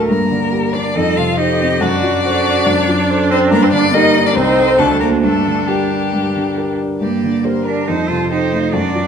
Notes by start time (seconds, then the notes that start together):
Already playing: D2 A2 A3 F#4 A4
0.08 G2 A#3 A#4
0.31 D3
0.52 G4 A#4
0.73 G3 D4 D5
0.95 F2 D#4 A4 D#5
1.17 C3 F4 F5
1.38 D#4 G4 A4 C5 D#5
1.60 C4
1.81 F#2 D4 F#4 D5
2.03 F#3
2.24 F#4 A4 C5
2.46 D4
2.66 F#2 D4
2.88 F#3
3.09 A4 C5
3.30 C4 D4 C5
3.51 G2 A#3 A#4
3.63 C4 C5
3.73 D3 D4 D5
3.93 A#3 D#4 G4 A#4 D#5
4.15 D4
4.27 D4 D5
4.36 C2 C4 D#4 C5
4.57 A4 C5
4.79 D2 A3 D4 A4
5.00 A#3 F#4 A#4 C5
5.23 G2 A3 D4 A4
5.46 D3
5.68 G3 G4 A#4
5.91 D4
6.13 G2
6.36 D3
6.57 G4 A#4
6.80 D4
7.01 G2 A#3 G4 D5
7.23 D3
7.44 G4 A#4 C5
7.66 D4 A#4
7.88 F2 D#4 A4 C5
8.09 C3 F4
8.31 D#4 G4 A4 C5
8.52 A3 F4
8.73 F#2 D4 F#4 D5
8.95 F#3 F#4